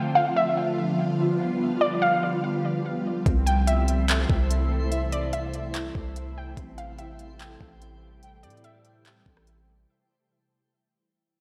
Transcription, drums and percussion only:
0, 0, Header, 1, 2, 480
1, 0, Start_track
1, 0, Key_signature, 0, "minor"
1, 0, Tempo, 413793
1, 1864, Time_signature, 4, 2, 24, 8
1, 13229, End_track
2, 0, Start_track
2, 0, Title_t, "Drums"
2, 3783, Note_on_c, 9, 36, 122
2, 3784, Note_on_c, 9, 42, 80
2, 3899, Note_off_c, 9, 36, 0
2, 3900, Note_off_c, 9, 42, 0
2, 4025, Note_on_c, 9, 42, 79
2, 4141, Note_off_c, 9, 42, 0
2, 4263, Note_on_c, 9, 42, 80
2, 4379, Note_off_c, 9, 42, 0
2, 4502, Note_on_c, 9, 42, 71
2, 4618, Note_off_c, 9, 42, 0
2, 4742, Note_on_c, 9, 42, 80
2, 4751, Note_on_c, 9, 39, 113
2, 4858, Note_off_c, 9, 42, 0
2, 4867, Note_off_c, 9, 39, 0
2, 4983, Note_on_c, 9, 36, 102
2, 5099, Note_off_c, 9, 36, 0
2, 5227, Note_on_c, 9, 42, 80
2, 5343, Note_off_c, 9, 42, 0
2, 5704, Note_on_c, 9, 42, 76
2, 5820, Note_off_c, 9, 42, 0
2, 5944, Note_on_c, 9, 42, 77
2, 6060, Note_off_c, 9, 42, 0
2, 6182, Note_on_c, 9, 42, 79
2, 6298, Note_off_c, 9, 42, 0
2, 6421, Note_on_c, 9, 42, 68
2, 6537, Note_off_c, 9, 42, 0
2, 6662, Note_on_c, 9, 42, 75
2, 6671, Note_on_c, 9, 39, 116
2, 6778, Note_off_c, 9, 42, 0
2, 6787, Note_off_c, 9, 39, 0
2, 6903, Note_on_c, 9, 36, 94
2, 7019, Note_off_c, 9, 36, 0
2, 7147, Note_on_c, 9, 42, 79
2, 7263, Note_off_c, 9, 42, 0
2, 7624, Note_on_c, 9, 36, 123
2, 7624, Note_on_c, 9, 42, 79
2, 7740, Note_off_c, 9, 36, 0
2, 7740, Note_off_c, 9, 42, 0
2, 7864, Note_on_c, 9, 42, 76
2, 7980, Note_off_c, 9, 42, 0
2, 8103, Note_on_c, 9, 42, 80
2, 8219, Note_off_c, 9, 42, 0
2, 8342, Note_on_c, 9, 42, 71
2, 8458, Note_off_c, 9, 42, 0
2, 8583, Note_on_c, 9, 42, 76
2, 8591, Note_on_c, 9, 39, 115
2, 8699, Note_off_c, 9, 42, 0
2, 8707, Note_off_c, 9, 39, 0
2, 8824, Note_on_c, 9, 36, 97
2, 8940, Note_off_c, 9, 36, 0
2, 9067, Note_on_c, 9, 42, 79
2, 9183, Note_off_c, 9, 42, 0
2, 9544, Note_on_c, 9, 42, 78
2, 9660, Note_off_c, 9, 42, 0
2, 9784, Note_on_c, 9, 42, 77
2, 9864, Note_off_c, 9, 42, 0
2, 9864, Note_on_c, 9, 42, 61
2, 9944, Note_off_c, 9, 42, 0
2, 9944, Note_on_c, 9, 42, 47
2, 10023, Note_off_c, 9, 42, 0
2, 10023, Note_on_c, 9, 42, 77
2, 10139, Note_off_c, 9, 42, 0
2, 10262, Note_on_c, 9, 42, 73
2, 10378, Note_off_c, 9, 42, 0
2, 10503, Note_on_c, 9, 42, 82
2, 10511, Note_on_c, 9, 39, 113
2, 10619, Note_off_c, 9, 42, 0
2, 10627, Note_off_c, 9, 39, 0
2, 10743, Note_on_c, 9, 36, 98
2, 10859, Note_off_c, 9, 36, 0
2, 10868, Note_on_c, 9, 37, 96
2, 10984, Note_off_c, 9, 37, 0
2, 10987, Note_on_c, 9, 42, 79
2, 11103, Note_off_c, 9, 42, 0
2, 13229, End_track
0, 0, End_of_file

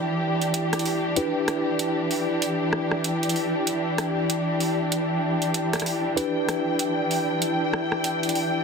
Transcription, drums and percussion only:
0, 0, Header, 1, 2, 480
1, 0, Start_track
1, 0, Key_signature, 1, "minor"
1, 0, Tempo, 625000
1, 899, Time_signature, 4, 2, 24, 8
1, 6635, End_track
2, 0, Start_track
2, 0, Title_t, "Drums"
2, 319, Note_on_c, 9, 42, 35
2, 396, Note_off_c, 9, 42, 0
2, 414, Note_on_c, 9, 42, 75
2, 491, Note_off_c, 9, 42, 0
2, 560, Note_on_c, 9, 37, 33
2, 560, Note_on_c, 9, 42, 44
2, 609, Note_off_c, 9, 42, 0
2, 609, Note_on_c, 9, 42, 59
2, 637, Note_off_c, 9, 37, 0
2, 657, Note_on_c, 9, 46, 55
2, 686, Note_off_c, 9, 42, 0
2, 733, Note_off_c, 9, 46, 0
2, 894, Note_on_c, 9, 42, 72
2, 971, Note_off_c, 9, 42, 0
2, 1136, Note_on_c, 9, 37, 46
2, 1136, Note_on_c, 9, 42, 60
2, 1212, Note_off_c, 9, 37, 0
2, 1212, Note_off_c, 9, 42, 0
2, 1377, Note_on_c, 9, 42, 72
2, 1453, Note_off_c, 9, 42, 0
2, 1618, Note_on_c, 9, 46, 52
2, 1695, Note_off_c, 9, 46, 0
2, 1858, Note_on_c, 9, 42, 67
2, 1935, Note_off_c, 9, 42, 0
2, 2094, Note_on_c, 9, 37, 46
2, 2171, Note_off_c, 9, 37, 0
2, 2238, Note_on_c, 9, 37, 34
2, 2315, Note_off_c, 9, 37, 0
2, 2337, Note_on_c, 9, 42, 74
2, 2414, Note_off_c, 9, 42, 0
2, 2481, Note_on_c, 9, 42, 44
2, 2530, Note_off_c, 9, 42, 0
2, 2530, Note_on_c, 9, 42, 59
2, 2579, Note_on_c, 9, 46, 54
2, 2607, Note_off_c, 9, 42, 0
2, 2656, Note_off_c, 9, 46, 0
2, 2819, Note_on_c, 9, 42, 66
2, 2895, Note_off_c, 9, 42, 0
2, 3059, Note_on_c, 9, 37, 46
2, 3059, Note_on_c, 9, 42, 60
2, 3136, Note_off_c, 9, 37, 0
2, 3136, Note_off_c, 9, 42, 0
2, 3300, Note_on_c, 9, 42, 69
2, 3377, Note_off_c, 9, 42, 0
2, 3536, Note_on_c, 9, 46, 55
2, 3613, Note_off_c, 9, 46, 0
2, 3778, Note_on_c, 9, 42, 70
2, 3855, Note_off_c, 9, 42, 0
2, 4161, Note_on_c, 9, 42, 32
2, 4238, Note_off_c, 9, 42, 0
2, 4257, Note_on_c, 9, 42, 67
2, 4334, Note_off_c, 9, 42, 0
2, 4404, Note_on_c, 9, 37, 29
2, 4404, Note_on_c, 9, 42, 42
2, 4420, Note_off_c, 9, 37, 0
2, 4420, Note_on_c, 9, 37, 24
2, 4451, Note_off_c, 9, 42, 0
2, 4451, Note_on_c, 9, 42, 55
2, 4470, Note_off_c, 9, 37, 0
2, 4470, Note_on_c, 9, 37, 20
2, 4502, Note_on_c, 9, 46, 56
2, 4528, Note_off_c, 9, 42, 0
2, 4546, Note_off_c, 9, 37, 0
2, 4579, Note_off_c, 9, 46, 0
2, 4741, Note_on_c, 9, 42, 68
2, 4818, Note_off_c, 9, 42, 0
2, 4981, Note_on_c, 9, 37, 46
2, 4981, Note_on_c, 9, 42, 57
2, 5058, Note_off_c, 9, 37, 0
2, 5058, Note_off_c, 9, 42, 0
2, 5217, Note_on_c, 9, 42, 65
2, 5294, Note_off_c, 9, 42, 0
2, 5459, Note_on_c, 9, 46, 58
2, 5536, Note_off_c, 9, 46, 0
2, 5697, Note_on_c, 9, 42, 66
2, 5773, Note_off_c, 9, 42, 0
2, 5940, Note_on_c, 9, 37, 48
2, 6017, Note_off_c, 9, 37, 0
2, 6082, Note_on_c, 9, 37, 34
2, 6159, Note_off_c, 9, 37, 0
2, 6176, Note_on_c, 9, 42, 69
2, 6253, Note_off_c, 9, 42, 0
2, 6322, Note_on_c, 9, 42, 44
2, 6367, Note_off_c, 9, 42, 0
2, 6367, Note_on_c, 9, 42, 55
2, 6416, Note_on_c, 9, 46, 56
2, 6444, Note_off_c, 9, 42, 0
2, 6493, Note_off_c, 9, 46, 0
2, 6635, End_track
0, 0, End_of_file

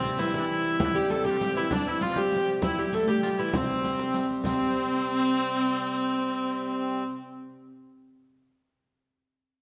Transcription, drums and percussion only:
0, 0, Header, 1, 3, 480
1, 0, Start_track
1, 0, Key_signature, 0, "major"
1, 0, Tempo, 302115
1, 1265, Time_signature, 6, 3, 24, 8
1, 15281, End_track
2, 0, Start_track
2, 0, Title_t, "Frame drum"
2, 297, Note_on_c, 9, 64, 31
2, 456, Note_off_c, 9, 64, 0
2, 542, Note_on_c, 9, 64, 82
2, 701, Note_off_c, 9, 64, 0
2, 1019, Note_on_c, 9, 64, 28
2, 1177, Note_off_c, 9, 64, 0
2, 1271, Note_on_c, 9, 64, 104
2, 1429, Note_off_c, 9, 64, 0
2, 1758, Note_on_c, 9, 64, 31
2, 1917, Note_off_c, 9, 64, 0
2, 1984, Note_on_c, 9, 64, 78
2, 2143, Note_off_c, 9, 64, 0
2, 2714, Note_on_c, 9, 64, 97
2, 2873, Note_off_c, 9, 64, 0
2, 3196, Note_on_c, 9, 64, 30
2, 3355, Note_off_c, 9, 64, 0
2, 3433, Note_on_c, 9, 64, 82
2, 3592, Note_off_c, 9, 64, 0
2, 4161, Note_on_c, 9, 64, 101
2, 4320, Note_off_c, 9, 64, 0
2, 4644, Note_on_c, 9, 64, 30
2, 4803, Note_off_c, 9, 64, 0
2, 4887, Note_on_c, 9, 64, 79
2, 5046, Note_off_c, 9, 64, 0
2, 5614, Note_on_c, 9, 64, 100
2, 5773, Note_off_c, 9, 64, 0
2, 6101, Note_on_c, 9, 64, 30
2, 6259, Note_off_c, 9, 64, 0
2, 6344, Note_on_c, 9, 64, 77
2, 6503, Note_off_c, 9, 64, 0
2, 6585, Note_on_c, 9, 64, 27
2, 6744, Note_off_c, 9, 64, 0
2, 6823, Note_on_c, 9, 64, 30
2, 6982, Note_off_c, 9, 64, 0
2, 7051, Note_on_c, 9, 64, 81
2, 7209, Note_off_c, 9, 64, 0
2, 15281, End_track
3, 0, Start_track
3, 0, Title_t, "Riq"
3, 299, Note_on_c, 9, 54, 73
3, 458, Note_off_c, 9, 54, 0
3, 1267, Note_on_c, 9, 54, 73
3, 1426, Note_off_c, 9, 54, 0
3, 1746, Note_on_c, 9, 54, 75
3, 1905, Note_off_c, 9, 54, 0
3, 1996, Note_on_c, 9, 54, 22
3, 2155, Note_off_c, 9, 54, 0
3, 2242, Note_on_c, 9, 54, 72
3, 2401, Note_off_c, 9, 54, 0
3, 2722, Note_on_c, 9, 54, 71
3, 2881, Note_off_c, 9, 54, 0
3, 3195, Note_on_c, 9, 54, 72
3, 3354, Note_off_c, 9, 54, 0
3, 3448, Note_on_c, 9, 54, 21
3, 3607, Note_off_c, 9, 54, 0
3, 3686, Note_on_c, 9, 54, 69
3, 3845, Note_off_c, 9, 54, 0
3, 4163, Note_on_c, 9, 54, 59
3, 4322, Note_off_c, 9, 54, 0
3, 4653, Note_on_c, 9, 54, 73
3, 4812, Note_off_c, 9, 54, 0
3, 4891, Note_on_c, 9, 54, 23
3, 5050, Note_off_c, 9, 54, 0
3, 5134, Note_on_c, 9, 54, 72
3, 5293, Note_off_c, 9, 54, 0
3, 5628, Note_on_c, 9, 54, 73
3, 5787, Note_off_c, 9, 54, 0
3, 5869, Note_on_c, 9, 54, 23
3, 6028, Note_off_c, 9, 54, 0
3, 6107, Note_on_c, 9, 54, 78
3, 6266, Note_off_c, 9, 54, 0
3, 6580, Note_on_c, 9, 54, 64
3, 6739, Note_off_c, 9, 54, 0
3, 6828, Note_on_c, 9, 54, 21
3, 6987, Note_off_c, 9, 54, 0
3, 7070, Note_on_c, 9, 54, 90
3, 7229, Note_off_c, 9, 54, 0
3, 15281, End_track
0, 0, End_of_file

